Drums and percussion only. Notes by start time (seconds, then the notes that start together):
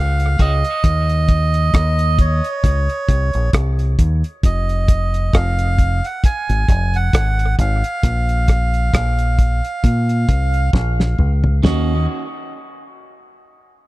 0.20 closed hi-hat
0.39 kick, closed hi-hat
0.64 closed hi-hat
0.84 kick, closed hi-hat
1.09 closed hi-hat
1.28 kick, closed hi-hat
1.54 closed hi-hat
1.74 kick, cross-stick, closed hi-hat
1.99 closed hi-hat
2.19 kick, closed hi-hat
2.44 closed hi-hat
2.64 kick, closed hi-hat
2.89 closed hi-hat
3.09 kick, closed hi-hat
3.33 closed hi-hat
3.53 kick, cross-stick, closed hi-hat
3.79 closed hi-hat
3.99 kick, closed hi-hat
4.24 closed hi-hat
4.43 kick, closed hi-hat
4.69 closed hi-hat
4.88 kick, closed hi-hat
5.14 closed hi-hat
5.33 kick, cross-stick, closed hi-hat
5.59 closed hi-hat
5.79 kick, closed hi-hat
6.05 closed hi-hat
6.24 kick, closed hi-hat
6.50 closed hi-hat
6.69 kick, closed hi-hat
6.94 closed hi-hat
7.13 kick, cross-stick, closed hi-hat
7.39 closed hi-hat
7.59 kick, closed hi-hat
7.84 closed hi-hat
8.03 kick, closed hi-hat
8.29 closed hi-hat
8.48 kick, cross-stick, closed hi-hat
8.74 closed hi-hat
8.93 kick, cross-stick, closed hi-hat
9.19 closed hi-hat
9.39 kick, closed hi-hat
9.64 closed hi-hat
9.84 kick, closed hi-hat
10.09 closed hi-hat
10.29 kick, closed hi-hat
10.54 closed hi-hat
10.73 kick, snare
11.00 snare
11.19 mid tom
11.44 floor tom
11.63 snare, floor tom